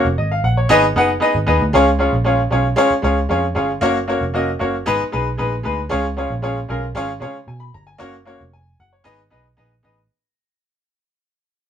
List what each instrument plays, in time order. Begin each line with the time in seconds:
0.05 picked electric bass F1
0.18 picked electric bass G#1, grand piano D#5
0.31 grand piano F5
0.44 picked electric bass A#1, grand piano F#5
0.57 grand piano C#5
0.69 picked electric bass G#1, grand piano B3 D#4 G#4 B4 D#5
0.96 picked electric bass F#1, grand piano B3 D#4 G#4 B4 F#5
1.20 grand piano B3 D#4 G#4 B4 D#5
1.35 picked electric bass G#1
1.46 picked electric bass D#2, grand piano B3 D#4 G#4 B4 D#5
1.61 picked electric bass D2
1.73 picked electric bass C#2, grand piano G#3 C#4 F4 G#4 C#5
1.99 grand piano G#3 C#4 F4 G#4 C#5
2.13 picked electric bass A#1
2.24 grand piano G#3 C#4 F4 G#4 C#5
2.50 picked electric bass B1, grand piano G#3 C#4 F4 G#4 C#5
2.76 grand piano G#3 C#4 F4 G#4 C#5
2.91 muted picked electric bass stroke
3.02 picked electric bass C#2, grand piano G#3 C#4 F4 G#4 C#5
3.29 picked electric bass F2, grand piano G#3 C#4 F4 G#4 C#5
3.55 picked electric bass G1, grand piano G#3 C#4 F4 G#4 C#5
3.81 picked electric bass F#1, grand piano A#3 C#4 F#4 A#4 C#5
4.08 grand piano A#3 C#4 F#4 A#4 C#5
4.21 picked electric bass F1
4.34 grand piano A#3 C#4 F#4 A#4 D#5
4.59 picked electric bass F#1, grand piano A#3 C#4 F#4 A#4 C#5
4.86 picked electric bass G#1, grand piano G#3 B3 D#4 G#4 B4
5.02 muted picked electric bass stroke
5.12 picked electric bass B1, grand piano G#3 B3 D#4 G#4 B4
5.38 picked electric bass A#1, grand piano G#3 B3 D#4 G#4 B4
5.63 picked electric bass D2, grand piano G#3 B3 D#4 G#4 B4
5.89 picked electric bass C#2, grand piano G#3 C#4 F4 G#4 C#5
6.17 grand piano G#3 C#4 F4 G#4 C#5
6.31 picked electric bass A#1
6.42 grand piano G#3 C#4 F4 G#4 C#5
6.68 picked electric bass B1, grand piano G#3 C#4 F4 G#4 A#4
6.95 picked electric bass G#1, grand piano G#3 C#4 F4 G#4 C#5
7.20 picked electric bass C#3, grand piano G#3 C#4 F4 G#4 C#5
7.48 picked electric bass B2, grand piano G#5
7.60 grand piano B5
7.74 picked electric bass G1, grand piano A#5
7.87 grand piano G#5
7.98 picked electric bass F#1, grand piano A#3 C#4 F#4 A#4 C#5
8.25 grand piano A#3 C#4 F#4 A#4 C#5
8.41 picked electric bass F1
8.53 grand piano G#5
8.80 picked electric bass F#1, grand piano F#5
8.93 grand piano C#5
9.04 picked electric bass G#1, grand piano B3 D#4 G#4 B4 D#5
9.30 picked electric bass B1, grand piano B3 D#4 G#4 B4 D#5
9.57 picked electric bass A#1, grand piano B3 D#4 G#4 B4 D#5
9.83 picked electric bass A1, grand piano B3 D#4 G#4 B4 D#5